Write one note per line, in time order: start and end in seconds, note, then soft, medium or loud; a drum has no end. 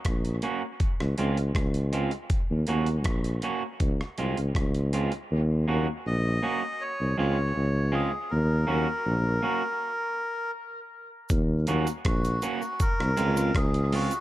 0.05 0.39 A#1 medium
0.05 kick loud
0.05 cross-stick loud
0.05 closed hi-hat medium
0.25 closed hi-hat medium
0.42 0.61 A#3 medium
0.42 0.62 C#4 medium
0.42 0.62 F#4 medium
0.42 closed hi-hat medium
0.80 kick medium
0.80 closed hi-hat medium
1.00 1.16 C#2 medium
1.00 cross-stick medium
1.18 1.52 C#2 medium
1.18 1.36 G#3 medium
1.18 1.37 C4 medium
1.18 1.37 F4 medium
1.18 closed hi-hat medium
1.37 closed hi-hat medium
1.55 2.08 C#2 medium
1.55 kick loud
1.55 cross-stick loud
1.55 closed hi-hat medium
1.74 closed hi-hat medium
1.93 2.11 G#3 medium
1.93 2.12 C4 medium
1.93 2.11 F4 medium
1.93 closed hi-hat medium
2.11 muted clean electric guitar stroke soft
2.11 closed hi-hat soft
2.30 kick loud
2.30 closed hi-hat medium
2.50 2.66 D#2 medium
2.67 3.07 D#2 medium
2.67 2.86 A#3 medium
2.67 2.87 C#4 medium
2.67 2.87 F#4 medium
2.67 closed hi-hat medium
2.86 closed hi-hat medium
3.04 3.39 A#1 medium
3.04 kick loud
3.04 cross-stick loud
3.04 closed hi-hat medium
3.24 closed hi-hat medium
3.42 3.62 A#3 medium
3.42 3.62 C#4 medium
3.42 3.62 F#4 medium
3.42 closed hi-hat medium
3.80 3.98 C#2 loud
3.80 kick medium
3.80 closed hi-hat medium
4.01 cross-stick medium
4.18 4.36 C2 medium
4.18 4.37 G#3 medium
4.18 4.37 C4 medium
4.18 4.37 F4 medium
4.18 closed hi-hat medium
4.37 4.54 C#2 medium
4.37 closed hi-hat soft
4.55 5.08 C#2 medium
4.55 kick medium
4.55 cross-stick loud
4.55 closed hi-hat medium
4.75 closed hi-hat soft
4.93 5.12 G#3 medium
4.93 5.12 C4 medium
4.93 5.12 F4 medium
4.93 closed hi-hat medium
5.12 muted clean electric guitar stroke soft
5.12 closed hi-hat soft
5.31 5.64 D#2 loud
5.68 5.86 D#2 loud
5.68 5.86 A#3 medium
5.68 5.87 C#4 medium
5.68 5.87 F#4 loud
6.06 6.39 A#1 medium
6.06 6.83 D#5 loud
6.43 6.61 A#3 medium
6.43 6.62 C#4 medium
6.43 6.62 F#4 medium
6.81 7.17 C#5 loud
7.00 7.16 C2 medium
7.18 7.52 C#2 medium
7.18 7.36 G#3 medium
7.18 7.37 C4 medium
7.18 7.37 F4 medium
7.18 7.95 C#5 medium
7.56 8.08 C#2 medium
7.92 8.11 G#3 medium
7.92 8.11 C4 medium
7.92 8.11 F4 medium
7.92 8.32 G#4 medium
8.12 muted clean electric guitar stroke soft
8.30 8.65 D#2 loud
8.30 10.51 A#4 medium
8.67 8.85 D#2 medium
8.67 8.86 A#3 medium
8.67 8.86 C#4 medium
8.67 8.87 F#4 medium
9.06 9.39 A#1 medium
9.42 9.61 A#3 medium
9.42 9.61 C#4 medium
9.42 9.62 F#4 medium
11.29 11.64 D#2 loud
11.29 kick loud
11.29 closed hi-hat medium
11.29 cabasa medium
11.67 11.86 D#2 loud
11.67 11.86 A#3 medium
11.67 11.87 C#4 medium
11.67 11.87 F#4 loud
11.67 closed hi-hat medium
11.67 cabasa soft
11.87 closed hi-hat soft
11.87 cabasa medium
12.05 12.39 A#1 medium
12.05 12.83 F#4 medium
12.05 kick loud
12.05 cross-stick loud
12.05 closed hi-hat loud
12.25 closed hi-hat medium
12.25 cabasa medium
12.42 12.61 A#3 medium
12.42 12.62 C#4 medium
12.42 12.61 F#4 medium
12.42 closed hi-hat medium
12.42 cabasa medium
12.62 muted clean electric guitar stroke soft
12.62 cabasa medium
12.80 13.58 A#4 loud
12.80 kick loud
12.80 closed hi-hat medium
12.80 cabasa medium
13.00 13.16 C2 medium
13.00 cross-stick medium
13.17 13.52 C#2 medium
13.17 13.36 G#3 medium
13.17 13.36 C4 medium
13.17 13.35 F4 medium
13.17 closed hi-hat medium
13.17 cabasa medium
13.36 13.51 G#3 soft
13.36 13.51 C4 soft
13.36 13.50 F4 medium
13.36 closed hi-hat medium
13.36 cabasa medium
13.55 14.08 C#2 loud
13.55 13.94 G#4 loud
13.55 kick loud
13.55 cross-stick loud
13.55 closed hi-hat medium
13.74 closed hi-hat medium
13.92 14.11 G#3 medium
13.92 14.11 C4 medium
13.92 14.12 F4 medium
13.92 14.20 F#4 medium
13.92 open hi-hat medium
14.11 closed hi-hat soft
14.11 cabasa medium